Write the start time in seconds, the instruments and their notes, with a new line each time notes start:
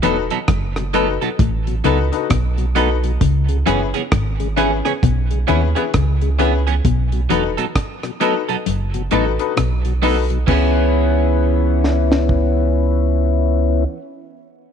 0.02 sub bass E1, clean electric guitar E2 F#3 B3 D#4 A4, tonewheel organ A3 B3 D#4, upright piano D#4 F#4 A4 B4, closed hi-hat
0.30 tonewheel organ B2 F#3, clean electric guitar F#3 B3 D#4 A4, closed hi-hat
0.48 sub bass F#1, clean electric guitar F#2, kick, cross-stick, closed hi-hat
0.76 tonewheel organ B2 F#3, cross-stick, closed hi-hat
0.93 clean electric guitar F#3 B3 D#4 A4, tonewheel organ A3 B3 D#4, upright piano D#4 F#4 A4 B4, closed hi-hat
1.21 tonewheel organ B2 F#3, clean electric guitar F#3 B3 D#4 A4, upright piano A4 B4, closed hi-hat
1.39 sub bass A1, clean electric guitar A2, kick, closed hi-hat
1.67 tonewheel organ B2 F#3, closed hi-hat
1.84 sub bass C#2, clean electric guitar C#3 F#3 B3 D#4 A4, tonewheel organ A3 B3 D#4, upright piano D#4 F#4 A4 B4, closed hi-hat
2.12 upright piano D#4 F#4 A4 B4, closed hi-hat
2.30 sub bass B1, clean electric guitar B2, kick, cross-stick, closed hi-hat
2.58 tonewheel organ B2 F#3, closed hi-hat
2.75 clean electric guitar F#3 B3 D#4 A4, tonewheel organ A3 B3 D#4, upright piano D#4 F#4 A4 B4, closed hi-hat
3.04 tonewheel organ B2 F#3, closed hi-hat
3.21 sub bass C#2, clean electric guitar C#3, kick, closed hi-hat
3.49 tonewheel organ C#3 G#3, closed hi-hat
3.66 sub bass F#1, clean electric guitar F#2 E3 B3 C#4 G#4, tonewheel organ B3 C#4 E4, upright piano C#4 E4 G#4 B4, closed hi-hat
3.94 tonewheel organ C#3 G#3, clean electric guitar E3 B3 C#4 G#4, closed hi-hat
4.12 sub bass G#1, clean electric guitar G#2, kick, cross-stick, closed hi-hat
4.40 tonewheel organ C#3 G#3, closed hi-hat
4.56 clean electric guitar E3 B3 C#4 G#4, tonewheel organ B3 C#4 E4, upright piano C#4 E4 G#4 B4, closed hi-hat
4.85 tonewheel organ C#3 G#3, clean electric guitar E3 B3 C#4 G#4, upright piano G#4 B4, cross-stick, closed hi-hat
5.03 sub bass B1, clean electric guitar B2, kick, closed hi-hat
5.31 tonewheel organ C#3 G#3, closed hi-hat
5.47 sub bass D#2, clean electric guitar D#3 E3 B3 C#4 G#4, tonewheel organ B3 C#4 E4, upright piano C#4 E4 G#4 B4, closed hi-hat
5.75 clean electric guitar E3 B3 C#4 G#4, upright piano C#4 E4 G#4 B4, closed hi-hat
5.94 sub bass C#2, clean electric guitar C#3, kick, cross-stick, closed hi-hat
6.21 tonewheel organ C#3 G#3, closed hi-hat
6.38 clean electric guitar E3 B3 C#4 G#4, tonewheel organ B3 C#4 E4, upright piano C#4 E4 G#4 B4, closed hi-hat
6.67 clean electric guitar E3 B3 C#4 G#4, closed hi-hat
6.85 sub bass B1, clean electric guitar B2, kick, closed hi-hat
7.12 tonewheel organ B2 F#3, closed hi-hat
7.29 sub bass E1, clean electric guitar E2 F#3 B3 D#4 A4, tonewheel organ A3 B3 D#4, upright piano D#4 F#4 A4 B4, closed hi-hat
7.57 tonewheel organ B2 F#3, clean electric guitar F#3 B3 D#4 A4, closed hi-hat
7.75 kick, cross-stick, closed hi-hat
8.03 tonewheel organ B2 F#3, cross-stick, closed hi-hat
8.20 clean electric guitar F#3 B3 D#4 A4, tonewheel organ A3 B3 D#4, upright piano D#4 F#4 A4 B4, closed hi-hat
8.49 tonewheel organ B2 F#3, clean electric guitar F#3 B3 D#4 A4, upright piano A4 B4, closed hi-hat
8.66 sub bass F#1, clean electric guitar F#2, closed hi-hat
8.94 tonewheel organ B2 F#3, closed hi-hat
9.11 sub bass A1, clean electric guitar A2 F#3 B3 D#4 A4, tonewheel organ A3 B3 D#4, upright piano D#4 F#4 A4 B4, closed hi-hat
9.39 upright piano D#4 F#4 A4 B4, closed hi-hat
9.57 sub bass B1, clean electric guitar B2, cross-stick, closed hi-hat
9.85 tonewheel organ B2 F#3, closed hi-hat
10.02 clean electric guitar F#3 B3 D#4 A4, tonewheel organ A3 B3 D#4, upright piano D#4 F#4 A4 B4, open hi-hat
10.30 tonewheel organ B2 F#3, closed hi-hat
10.47 sub bass C#2, clean electric guitar E3 B3 C#4, tonewheel organ B3 C#4 E4, upright piano C#4 E4 G#4 B4, kick, crash
10.52 clean electric guitar G#4
11.84 snare
12.12 snare
12.29 kick